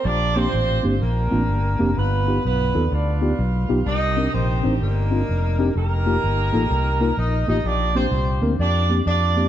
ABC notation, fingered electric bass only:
X:1
M:4/4
L:1/8
Q:"Swing" 1/4=127
K:Bb
V:1 name="Fingered electric bass" clef=bass
B,,,2 A,,, G,,, B,,, A,,, G,,, F,,, | G,,,2 =B,,, E,, D,,2 B,,, B,,, | C,,2 B,,, A,,, G,,,2 F,,,2 | F,,,2 G,,, A,,, C,,2 B,,, A,,, |
B,,,2 C,, D,, F,,2 F,,2 |]